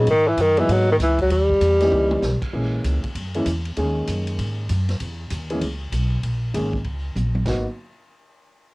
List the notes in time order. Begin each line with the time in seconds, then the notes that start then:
0.07 G#2 D#3, ride
0.28 E3
0.37 F#2 D#3, hi-hat pedal, ride
0.57 E3 F#3 G#3 A#3 B3 D#4, ride
0.69 G#2 F#3, ride
0.92 D#3
0.99 C#2, hi-hat pedal, ride
1.03 E3
1.19 F#3, kick, ride
1.30 D#2 G3, ride
1.50 kick
1.61 E2, hi-hat pedal, ride
1.80 E3 G3 A#3 C#4 D#4, snare, ride
1.92 C#2, mid tom
2.11 mid tom
2.22 B1, snare, hi-hat pedal
2.42 muted upright bass stroke, kick, crash
2.53 A#1 E3 G#3 A#3 C#4 G#4
2.84 C#2, hi-hat pedal, ride
3.03 muted upright bass stroke, kick, ride
3.15 F#2, ride
3.34 E3 G#3 A#3 C#4 E4, ride
3.45 E2, hi-hat pedal, ride
3.65 ride
3.76 D#2 D#3 G#3 A#3 C#4 G#4, ride
4.07 F#2, hi-hat pedal, ride
4.27 ride
4.38 G#2, ride
4.69 F#2, hi-hat pedal, ride
4.88 snare, ride
5.00 E2, ride
5.30 D#2, hi-hat pedal, ride
5.50 E3 G#3 A#3 C#4 G#4, ride
5.61 C#2, ride
5.92 B1, hi-hat pedal, ride
6.23 A#1, ride
6.54 G#1 D#3 G#3 A#3 C#4 G#4, hi-hat pedal, ride
6.73 kick
6.84 C#2, ride
7.16 A#1, hi-hat pedal, high tom
7.35 high tom
7.46 G#1 A#3 B3 D#4 F#4, kick, snare, crash